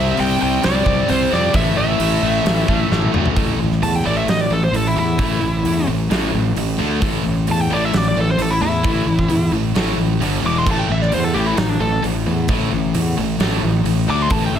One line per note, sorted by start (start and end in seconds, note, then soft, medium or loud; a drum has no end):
0.00 0.12 C2 loud
0.00 0.16 C3 medium
0.00 1.30 C3 loud
0.00 0.17 G3 medium
0.00 1.31 G3 medium
0.00 0.18 C4 loud
0.00 1.31 C4 medium
0.00 0.16 E5 loud
0.17 0.35 C2 medium
0.17 0.39 C3 loud
0.17 0.39 G3 loud
0.17 0.40 C4 loud
0.17 0.41 G5 loud
0.17 open hi-hat medium
0.40 0.58 C2 medium
0.40 0.61 C3 medium
0.40 0.62 G3 loud
0.40 0.63 C4 medium
0.40 0.65 G5 medium
0.63 0.80 C2 medium
0.63 0.84 C3 medium
0.63 0.84 G3 medium
0.63 0.85 C4 loud
0.63 1.11 D5 medium
0.63 snare loud
0.63 open hi-hat medium
0.85 1.02 C2 loud
0.85 1.07 C3 loud
0.85 1.08 G3 medium
0.85 1.09 C4 loud
0.85 kick medium
1.08 1.26 C2 loud
1.08 1.30 C3 loud
1.08 1.30 G3 loud
1.08 1.32 C4 medium
1.08 1.33 C5 medium
1.08 open hi-hat medium
1.31 1.48 F2 loud
1.31 1.53 C3 medium
1.31 1.53 G3 medium
1.31 1.55 C4 medium
1.31 1.56 D5 medium
1.31 snare soft
1.54 1.70 A1 loud
1.54 1.76 A2 loud
1.54 1.77 E3 loud
1.54 1.77 A3 loud
1.54 1.77 E5 loud
1.54 kick loud
1.54 open hi-hat medium
1.77 1.93 A1 medium
1.77 1.98 A2 medium
1.77 1.99 E3 medium
1.77 1.99 A3 medium
1.77 3.10 E5 medium
1.99 2.16 A1 medium
1.99 2.22 A2 loud
1.99 2.23 E3 loud
1.99 2.23 A3 loud
1.99 open hi-hat medium
2.23 2.39 A1 medium
2.23 2.45 A2 medium
2.23 2.45 E3 loud
2.23 2.46 A3 loud
2.45 2.61 A1 medium
2.45 2.67 A2 loud
2.45 2.67 E3 loud
2.45 2.68 A3 loud
2.45 snare loud
2.45 open hi-hat medium
2.68 2.84 A1 medium
2.68 2.90 A2 loud
2.68 2.91 E3 loud
2.68 2.91 A3 loud
2.68 kick medium
2.91 3.07 A1 loud
2.91 3.13 A2 medium
2.91 3.13 E3 medium
2.91 3.14 A3 loud
2.91 snare medium
3.02 high tom medium
3.14 3.30 D2 medium
3.14 3.35 A2 medium
3.14 3.36 E3 medium
3.14 3.36 A3 medium
3.14 mid tom loud
3.26 floor tom medium
3.36 3.58 A1 medium
3.36 3.58 A2 medium
3.36 3.58 E3 medium
3.36 3.58 A3 medium
3.36 kick loud
3.36 open hi-hat medium
3.59 3.81 A1 medium
3.59 3.80 A2 medium
3.59 3.80 E3 medium
3.72 snare soft
3.82 4.05 E2 medium
3.82 4.03 A2 medium
3.82 4.03 E3 loud
3.82 3.96 A5 medium
3.82 open hi-hat medium
3.96 4.06 G5 medium
4.04 4.27 A1 loud
4.04 4.26 A2 medium
4.04 4.26 E3 medium
4.04 4.27 A3 loud
4.04 4.17 D5 medium
4.18 4.28 E5 medium
4.27 4.50 A1 medium
4.27 4.48 A2 medium
4.27 4.48 E3 medium
4.27 4.41 D#5 loud
4.27 snare loud
4.27 open hi-hat medium
4.41 4.51 D5 medium
4.50 4.72 A1 medium
4.50 4.71 A2 medium
4.50 4.71 E3 medium
4.50 4.63 A4 medium
4.64 4.74 C5 medium
4.72 4.95 A1 loud
4.72 4.94 A2 medium
4.72 4.94 E3 medium
4.72 open hi-hat medium
4.76 4.86 A4 medium
4.87 4.97 E4 medium
4.95 5.18 E2 medium
4.95 5.16 A2 medium
4.95 5.16 E3 medium
4.99 5.87 E4 loud
5.18 5.41 A1 loud
5.18 5.39 A2 medium
5.18 5.39 E3 medium
5.18 5.40 A3 medium
5.18 kick loud
5.18 open hi-hat medium
5.40 5.64 A1 medium
5.40 5.62 A2 medium
5.40 5.62 E3 medium
5.63 5.87 E2 medium
5.63 5.85 A2 medium
5.63 5.85 E3 loud
5.63 open hi-hat medium
5.86 6.10 A1 medium
5.86 6.08 A2 medium
5.86 6.08 E3 medium
6.09 6.33 A1 medium
6.09 6.32 A2 medium
6.09 6.32 E3 medium
6.09 6.32 A3 loud
6.09 snare loud
6.09 open hi-hat medium
6.33 6.56 A1 loud
6.33 6.54 A2 medium
6.33 6.54 E3 medium
6.55 6.79 A1 loud
6.55 6.76 A2 medium
6.55 6.77 E3 medium
6.55 open hi-hat medium
6.78 7.02 D2 medium
6.78 7.00 D3 medium
6.78 7.01 A3 medium
6.78 7.01 D4 medium
7.01 7.24 A1 loud
7.01 7.23 A2 medium
7.01 7.23 E3 medium
7.01 7.23 A3 medium
7.01 kick loud
7.01 open hi-hat medium
7.24 7.47 A1 medium
7.24 7.45 A2 medium
7.24 7.45 E3 medium
7.47 7.71 E2 medium
7.47 7.68 A2 medium
7.47 7.68 E3 loud
7.47 open hi-hat medium
7.51 7.61 A5 medium
7.61 7.71 G5 medium
7.70 7.93 A1 medium
7.70 7.92 A2 loud
7.70 7.92 E3 loud
7.70 7.92 A3 loud
7.74 7.85 D5 medium
7.85 7.97 E5 medium
7.93 8.16 A1 medium
7.93 8.14 A2 medium
7.93 8.14 E3 medium
7.93 snare loud
7.93 open hi-hat medium
7.97 8.07 D5 loud
8.08 8.18 D5 medium
8.15 8.38 A1 medium
8.15 8.36 A2 medium
8.15 8.37 E3 medium
8.21 8.30 A4 medium
8.31 8.42 C5 medium
8.37 8.61 A1 loud
8.37 8.59 A2 medium
8.37 8.59 E3 medium
8.37 open hi-hat medium
8.42 8.52 A4 medium
8.51 8.61 E4 medium
8.61 8.84 E2 medium
8.61 8.82 A2 medium
8.61 8.82 E3 medium
8.61 9.51 E4 loud
8.84 9.06 A1 loud
8.84 9.05 A2 medium
8.84 9.06 E3 medium
8.84 9.06 A3 loud
8.84 kick loud
8.84 open hi-hat medium
9.06 9.29 A1 medium
9.06 9.28 A2 medium
9.06 9.28 E3 medium
9.19 kick medium
9.29 9.51 E2 loud
9.29 9.51 A2 medium
9.29 9.51 E3 loud
9.29 open hi-hat medium
9.52 9.75 A1 medium
9.52 9.74 A2 medium
9.52 9.74 E3 medium
9.75 9.97 A1 medium
9.75 9.97 A2 medium
9.75 9.97 E3 medium
9.75 9.98 A3 loud
9.75 snare loud
9.75 open hi-hat medium
9.97 10.19 A1 medium
9.97 10.19 A2 medium
9.97 10.19 E3 medium
10.20 10.43 G1 medium
10.20 10.43 G2 loud
10.20 10.43 D3 loud
10.20 10.43 G3 medium
10.20 open hi-hat medium
10.44 10.66 E1 medium
10.44 10.65 E2 medium
10.44 10.66 B2 medium
10.44 10.66 E3 medium
10.44 10.58 D6 loud
10.58 10.68 C6 medium
10.67 10.88 A1 medium
10.67 10.88 A2 loud
10.67 10.89 E3 loud
10.67 10.89 A3 loud
10.67 kick loud
10.67 crash loud
10.71 10.79 A5 medium
10.80 10.90 G5 loud
10.89 11.11 A1 medium
10.89 11.10 A2 medium
10.89 11.11 E3 medium
10.89 11.02 E5 medium
11.02 11.13 D5 medium
11.02 snare soft
11.12 11.35 E2 medium
11.12 11.33 A2 medium
11.12 11.33 E3 loud
11.12 11.24 C5 medium
11.12 open hi-hat medium
11.24 11.35 A4 medium
11.34 11.57 A1 medium
11.34 11.56 A2 loud
11.34 11.56 E3 loud
11.34 11.57 A3 loud
11.34 11.46 G4 loud
11.46 11.57 E4 loud
11.57 11.80 A1 medium
11.57 11.78 A2 medium
11.57 11.78 E3 loud
11.57 11.69 D#4 medium
11.57 snare loud
11.57 open hi-hat medium
11.69 11.81 D4 loud
11.80 12.03 A1 medium
11.80 12.01 A2 medium
11.80 12.01 E3 medium
11.80 12.03 A4 loud
12.03 12.26 A1 loud
12.03 12.24 A2 medium
12.03 12.24 E3 medium
12.03 open hi-hat medium
12.26 12.48 E2 loud
12.26 12.47 A2 medium
12.26 12.47 E3 medium
12.48 12.71 A1 loud
12.48 12.70 A2 medium
12.48 12.71 E3 medium
12.48 12.71 A3 medium
12.48 kick loud
12.48 open hi-hat medium
12.71 12.94 A1 loud
12.71 12.92 A2 medium
12.71 12.93 E3 medium
12.94 13.17 E2 medium
12.94 13.15 A2 medium
12.94 13.15 E3 medium
12.94 open hi-hat medium
13.17 13.39 A1 medium
13.17 13.38 A2 medium
13.17 13.38 E3 medium
13.39 13.62 A1 loud
13.39 13.61 A2 loud
13.39 13.61 E3 loud
13.39 13.62 A3 loud
13.39 snare loud
13.39 open hi-hat medium
13.62 13.84 A1 medium
13.62 13.83 A2 medium
13.62 13.83 E3 medium
13.84 14.07 A1 loud
13.84 14.05 A2 medium
13.84 14.06 E3 medium
13.84 open hi-hat medium
14.07 14.30 D2 medium
14.07 14.29 D3 medium
14.07 14.29 A3 medium
14.07 14.30 D4 medium
14.07 14.22 D6 loud
14.22 14.31 C6 loud
14.29 14.52 A1 loud
14.29 14.52 A2 loud
14.29 14.52 E3 loud
14.29 14.52 A3 loud
14.29 14.43 A5 loud
14.29 kick loud
14.29 open hi-hat medium
14.46 14.56 G5 medium
14.53 14.59 A1 medium
14.53 14.59 A2 medium
14.53 14.59 E3 medium
14.53 14.59 E5 medium